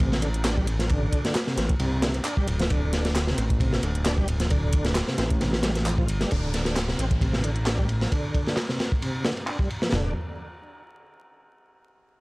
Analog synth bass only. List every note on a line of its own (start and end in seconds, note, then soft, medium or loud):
0.00 1.08 A1 loud
1.57 1.74 A1 loud
1.80 2.21 C2 loud
2.47 3.33 D1 medium
3.38 3.78 A1 loud
3.83 5.03 D1 loud
5.18 6.10 A1 loud
6.08 6.25 G1 loud
6.32 6.95 D1 loud
6.99 8.07 A1 loud
9.92 10.13 D1 medium